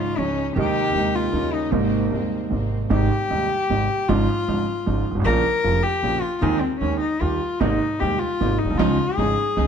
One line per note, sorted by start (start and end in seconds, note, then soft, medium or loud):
0.00 0.16 G#1 soft
0.00 0.16 G#2 soft
0.00 0.15 C#3 soft
0.00 0.16 F3 soft
0.00 0.16 G#3 soft
0.00 0.16 C#4 soft
0.00 0.16 D#4 soft
0.00 0.17 D#4 soft
0.00 0.20 F4 medium
0.18 0.55 C#2 soft
0.18 0.55 C#3 soft
0.18 0.54 F3 soft
0.18 0.55 F3 soft
0.18 0.55 G#3 soft
0.18 0.55 C#4 soft
0.18 0.47 C#4 medium
0.18 0.55 D#4 soft
0.18 0.56 D#4 soft
0.55 0.93 D#2 medium
0.55 0.91 C3 medium
0.55 0.93 D#3 medium
0.55 0.93 G#3 medium
0.55 0.94 G#3 medium
0.55 0.93 C4 medium
0.55 0.93 D#4 medium
0.55 1.17 G4 loud
0.59 0.94 D#4 medium
0.92 1.31 D#2 soft
0.92 1.32 D#2 soft
0.92 1.30 C3 soft
0.92 1.31 D#3 soft
0.92 1.32 G#3 soft
0.92 1.32 C4 soft
0.92 1.32 D#4 soft
0.97 1.33 D#4 soft
1.15 1.55 F4 medium
1.31 1.70 D#2 soft
1.31 1.70 D#2 medium
1.31 1.69 C#3 soft
1.31 1.70 D#3 soft
1.31 1.70 G3 soft
1.31 1.71 G3 soft
1.31 1.70 A#3 soft
1.31 1.71 C#4 soft
1.31 1.71 D#4 soft
1.35 1.71 D#4 soft
1.54 1.74 D#4 medium
1.70 2.10 G#1 medium
1.70 2.10 G#2 medium
1.70 2.07 C3 medium
1.70 2.08 G#3 medium
1.70 2.10 G#3 medium
1.70 2.10 A#3 medium
1.70 2.52 A#3 medium
1.70 2.10 A#3 medium
1.70 2.10 C4 medium
1.74 2.10 D#4 medium
2.08 2.49 D#1 soft
2.08 2.49 D#2 soft
2.08 2.47 C3 soft
2.08 2.48 G#3 soft
2.08 2.49 A#3 soft
2.13 2.50 G#3 soft
2.13 2.50 A#3 soft
2.13 2.50 C4 soft
2.13 2.50 D#4 soft
2.48 2.89 G#1 soft
2.48 2.89 G#1 medium
2.48 2.89 G#2 soft
2.48 2.88 C3 soft
2.48 2.88 G#3 soft
2.48 2.90 G#3 soft
2.48 2.89 A#3 soft
2.48 2.90 A#3 soft
2.52 2.90 C4 soft
2.52 2.89 D#4 soft
2.90 3.07 G#1 medium
2.90 3.08 G#1 medium
2.90 3.07 G#2 medium
2.90 3.07 C3 medium
2.90 3.07 D#3 medium
2.90 3.07 G#3 medium
2.90 3.08 D#4 medium
2.90 4.10 G4 loud
3.30 3.47 D#1 medium
3.30 3.47 D#2 medium
3.30 3.47 C3 soft
3.30 3.47 D#3 soft
3.30 3.47 G#3 soft
3.30 3.47 D#4 medium
3.70 3.86 G#1 medium
3.70 3.87 G#1 medium
3.70 3.87 G#2 medium
3.70 3.86 C3 soft
3.70 3.87 D#3 soft
3.70 3.87 G#3 soft
3.70 3.87 D#4 medium
4.08 4.26 G#1 loud
4.08 4.26 G#1 medium
4.08 4.26 G#2 medium
4.08 4.25 C#3 medium
4.08 4.26 F3 medium
4.08 4.26 G#3 medium
4.08 4.26 D#4 medium
4.08 5.06 F4 loud
4.48 4.65 G#1 medium
4.48 4.65 G#2 medium
4.48 4.65 C#3 soft
4.48 4.64 F3 soft
4.48 4.65 G#3 soft
4.48 4.65 D#4 medium
4.86 5.03 G#1 medium
4.86 5.04 G#1 medium
4.86 5.03 G#2 medium
4.86 5.03 C#3 soft
4.86 5.03 F3 soft
4.86 5.03 G#3 soft
4.86 5.03 D#4 soft
5.11 5.16 G1 medium
5.15 5.20 G#1 medium
5.15 5.21 G#1 medium
5.20 5.25 A1 medium
5.25 5.42 A#1 medium
5.25 5.42 A#2 medium
5.25 5.42 C#3 medium
5.25 5.41 F3 medium
5.25 5.42 A#3 medium
5.25 5.42 F4 medium
5.25 5.84 A#4 loud
5.64 5.81 F1 medium
5.64 5.81 F2 medium
5.64 5.80 C#3 soft
5.64 5.81 F3 soft
5.64 5.81 A#3 soft
5.64 5.81 F4 medium
5.82 6.23 G4 loud
6.03 6.20 A#1 medium
6.03 6.20 A#2 medium
6.03 6.20 C#3 soft
6.03 6.20 F3 soft
6.03 6.20 A#3 soft
6.03 6.20 F4 medium
6.22 6.39 F4 loud
6.39 6.59 D#2 loud
6.39 6.59 D#2 medium
6.39 6.59 D#3 medium
6.39 6.59 G#3 medium
6.39 6.59 C4 medium
6.39 6.62 D#4 loud
6.39 6.43 F4 medium
6.43 6.59 G#4 medium
6.61 6.80 C4 medium
6.80 6.98 D#2 medium
6.80 6.98 D#3 medium
6.80 6.98 G#3 soft
6.80 6.98 C4 soft
6.80 6.99 C#4 medium
6.80 6.98 G#4 medium
7.00 7.22 D#4 medium
7.21 7.38 D#2 medium
7.21 7.38 D#3 medium
7.21 7.38 G3 soft
7.21 7.38 A#3 soft
7.21 7.61 F4 medium
7.21 7.38 G4 soft
7.60 7.78 G#1 medium
7.60 7.78 G#2 medium
7.60 7.78 C3 medium
7.60 7.78 G#3 medium
7.60 7.78 A#3 medium
7.60 7.78 C4 medium
7.60 8.01 D#4 loud
7.60 7.78 D#4 medium
8.00 8.17 D#1 medium
8.00 8.18 D#2 medium
8.00 8.17 C3 soft
8.00 8.17 G#3 soft
8.00 8.18 A#3 soft
8.00 8.18 C4 medium
8.00 8.18 D#4 medium
8.00 8.20 G4 medium
8.19 8.60 F4 loud
8.40 8.57 G#1 medium
8.40 8.57 G#2 medium
8.40 8.57 C3 soft
8.40 8.57 G#3 soft
8.40 8.57 A#3 soft
8.40 8.57 C4 medium
8.40 8.57 D#4 medium
8.58 8.79 D#4 medium
8.65 8.69 A#1 medium
8.65 8.70 A#1 medium
8.70 8.74 B1 medium
8.70 8.75 B1 medium
8.74 8.79 C2 medium
8.74 9.18 F4 loud
8.79 8.96 C#2 loud
8.79 8.96 C#2 medium
8.79 8.96 C#3 medium
8.79 8.95 F3 medium
8.79 8.96 F3 medium
8.79 8.96 G#3 medium
8.79 8.96 C#4 medium
8.79 8.96 D#4 medium
9.17 9.34 G#1 medium
9.17 9.35 G#1 medium
9.17 9.35 G#2 medium
9.17 9.34 C#3 medium
9.17 9.34 F3 soft
9.17 9.35 F3 soft
9.17 9.35 G#3 soft
9.17 9.34 C#4 soft
9.17 9.35 D#4 medium
9.17 9.67 G#4 loud
9.57 9.67 C#2 medium
9.57 9.67 C#3 medium
9.57 9.67 F3 medium
9.57 9.67 F3 soft
9.57 9.67 G#3 soft
9.57 9.67 C#4 soft
9.57 9.67 D#4 medium